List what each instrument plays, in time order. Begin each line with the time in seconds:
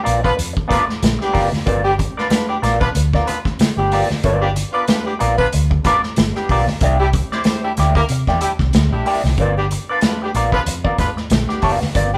0.04 fingered electric bass A#1, clean electric guitar B3 F4 A#4 D5, closed hi-hat
0.22 horn section B3 D4 F4 B4, muted clean electric guitar stroke, kick
0.36 fingered electric bass F2, muted clean electric guitar stroke, closed hi-hat
0.53 muted clean electric guitar stroke, kick
0.68 clean electric guitar B3 F4 A#4 D5, horn section B3 D4 F4 B4, kick, closed hi-hat, muted conga, low conga
0.72 snare
0.87 muted clean electric guitar stroke, snare
1.03 fingered electric bass A#1, snare, closed hi-hat, high conga
1.19 horn section G3 B3 D4 G4, muted clean electric guitar stroke, snare
1.32 fingered electric bass F#1, clean electric guitar B3 F4 A#4 D5, kick, open hi-hat
1.51 muted clean electric guitar stroke, snare, high conga
1.66 fingered electric bass G1, clean electric guitar B3 F4 A#4 D5, kick, closed hi-hat
1.84 horn section G3 B3 D4 G4
1.98 muted clean electric guitar stroke, kick, closed hi-hat, muted conga
2.17 horn section B3 D4 F4 B4, clean electric guitar B3 F4 A#4 D5, snare
2.30 horn section B3 D4 F4 B4, muted clean electric guitar stroke, snare, closed hi-hat, high conga
2.48 horn section G3 B3 D4 G4, muted clean electric guitar stroke
2.62 fingered electric bass A#1, clean electric guitar B3 F4 A#4 D5, snare, closed hi-hat
2.81 horn section B3 D4 F4 B4, kick
2.95 fingered electric bass D2, muted clean electric guitar stroke, closed hi-hat, muted conga
3.13 clean electric guitar B3 F4 A#4 D5, kick, snare
3.26 horn section B3 D4 F4 B4, closed hi-hat, muted conga
3.45 muted clean electric guitar stroke, kick, snare
3.59 muted fingered electric bass stroke, snare, closed hi-hat, high conga
3.76 fingered electric bass G1, horn section G3 B3 D4 G4, muted clean electric guitar stroke
3.92 clean electric guitar B3 F4 A#4 D5, open hi-hat
4.10 muted clean electric guitar stroke, snare, high conga
4.24 fingered electric bass G1, clean electric guitar B3 F4 A#4 D5, kick, closed hi-hat
4.41 horn section G3 B3 D4 G4
4.55 muted clean electric guitar stroke, closed hi-hat, muted conga
4.72 horn section B3 D4 F4 B4, clean electric guitar B3 F4 A#4 D5
4.88 horn section B3 D4 F4 B4, muted clean electric guitar stroke, snare, closed hi-hat, high conga
5.06 horn section G3 B3 D4 G4, muted clean electric guitar stroke
5.19 fingered electric bass A#1, clean electric guitar B3 F4 A#4 D5, closed hi-hat
5.38 horn section B3 D4 F4 B4, kick
5.52 fingered electric bass D2, muted clean electric guitar stroke, closed hi-hat
5.71 muted clean electric guitar stroke, kick
5.84 clean electric guitar B3 F4 A#4 D5, horn section B3 D4 F4 B4, kick, snare, closed hi-hat, muted conga, low conga
6.03 muted clean electric guitar stroke, snare
6.16 fingered electric bass G1, snare, closed hi-hat, high conga
6.35 horn section G3 B3 D4 G4, muted clean electric guitar stroke, snare
6.49 fingered electric bass B1, clean electric guitar B3 F4 A#4 D5, kick, open hi-hat
6.67 muted clean electric guitar stroke, snare, high conga
6.81 fingered electric bass C2, clean electric guitar A#3 E4 G4 D5, kick, closed hi-hat
6.99 horn section G3 D4 E4 G4
7.13 muted clean electric guitar stroke, kick, closed hi-hat, muted conga
7.31 clean electric guitar A#3 E4 G4 D5, horn section C4 E4 G4 C5, snare
7.44 horn section C4 E4 G4 C5, muted clean electric guitar stroke, snare, closed hi-hat, high conga
7.64 horn section G3 D4 E4 G4, muted clean electric guitar stroke
7.77 fingered electric bass D2, clean electric guitar A#3 E4 G4 D5, snare, closed hi-hat
7.95 horn section A#3 E4 G4 A#4, kick
8.09 fingered electric bass C3, muted clean electric guitar stroke, closed hi-hat
8.27 fingered electric bass E2, clean electric guitar A#3 E4 G4 D5, kick, snare
8.40 horn section G3 D4 E4 G4, muted clean electric guitar stroke, closed hi-hat, muted conga
8.59 fingered electric bass C2, muted clean electric guitar stroke, kick, snare
8.73 fingered electric bass D2, snare, closed hi-hat, high conga
8.91 fingered electric bass A#1, horn section G3 D4 E4 G4, muted clean electric guitar stroke
9.05 clean electric guitar A#3 E4 G4 D5, open hi-hat
9.24 fingered electric bass C2, snare, high conga
9.38 fingered electric bass G1, clean electric guitar B3 F4 A#4 D5, kick, closed hi-hat
9.57 horn section G3 B3 D4 G4
9.71 muted clean electric guitar stroke, closed hi-hat, muted conga
9.89 horn section B3 D4 F4 B4, clean electric guitar B3 F4 A#4 D5
10.01 horn section B3 D4 F4 B4, muted clean electric guitar stroke, snare, closed hi-hat, high conga
10.22 horn section G3 B3 D4 G4, muted clean electric guitar stroke
10.34 fingered electric bass A#1, clean electric guitar B3 F4 A#4 D5, closed hi-hat
10.52 horn section B3 D4 F4 B4, kick
10.66 fingered electric bass F2, muted clean electric guitar stroke, closed hi-hat, muted conga
10.84 clean electric guitar B3 F4 A#4 D5, kick
10.98 horn section B3 D4 F4 B4, kick, snare, closed hi-hat, muted conga, low conga
11.17 muted clean electric guitar stroke, snare
11.30 fingered electric bass A#1, muted clean electric guitar stroke, snare, closed hi-hat, high conga
11.47 horn section G3 B3 D4 G4, muted clean electric guitar stroke, snare
11.62 fingered electric bass F#1, clean electric guitar B3 F4 A#4 D5, kick, open hi-hat
11.80 muted clean electric guitar stroke, snare, high conga
11.95 fingered electric bass G1, clean electric guitar B3 F4 A#4 D5, kick, closed hi-hat
12.14 horn section G3 B3 D4 G4